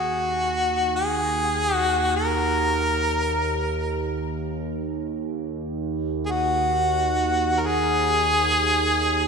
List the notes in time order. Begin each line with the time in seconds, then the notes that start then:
Already playing: D#2 F#4
0.96 G#4
1.76 F#4
2.16 A#4
6.26 G#4
6.31 F#4
7.60 A#4
7.67 G#4